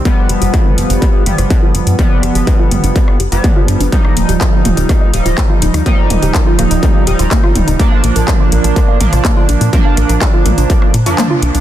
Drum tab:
HH |x-xxx-xxx-xxx-xx|x-xxx-xxx-xxx-xx|x-xxx-xxx-xxx-xx|x-xxx-xxx-xxx-xx|
CP |----------------|----------------|----x-------x---|----x-------x---|
SD |----r------r----|--r------r------|-r------r------r|------r------r--|
T2 |----o-----o-----|o-----o-----o---|o-----o-----o---|--o-----o-----o-|
BD |o---o---o---o---|o---o---o---o---|o---o---o---o---|o---o---o---o---|

HH |x-xxx-xxx-xxx-xx|x-xxx-xxx-xxx-xx|
CP |----x-------x---|----x-------x---|
SD |----r------r----|--r------r------|
T2 |----o-----o-----|o-----o-----o---|
BD |o---o---o---o---|o---o---o-------|